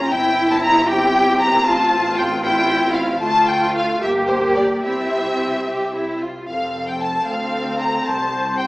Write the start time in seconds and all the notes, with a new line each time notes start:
Already playing: A#5
0.10 G1 C4 E4 G5
0.51 A5
0.63 A#5
0.89 G4 G5
1.40 A#5
1.65 A1 F4 A5
2.17 G5
2.43 E4 G5
2.95 F5
3.21 D2 A3 F4 A5
3.49 G5
3.76 F5
4.01 G1 A#3 G4 E5
4.29 C5
4.56 D5
4.83 C2 C4 E4 G4 E5
5.67 G4
5.95 E4
6.22 F4
6.48 F1 F2 C4 A4 F5
6.88 G5
7.02 A5
7.27 D2 A4 F5
7.79 A#5
8.05 C2 C5 A5
8.58 G5